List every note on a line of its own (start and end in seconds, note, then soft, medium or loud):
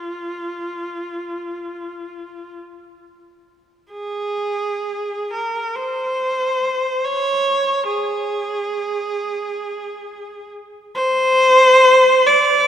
0.00 2.57 F4 medium
3.91 5.28 G#4 medium
5.33 5.76 A#4 medium
5.75 7.04 C5 medium
7.04 7.88 C#5 medium
7.87 10.48 G#4 medium
10.95 12.23 C5 loud
12.27 12.68 D5 loud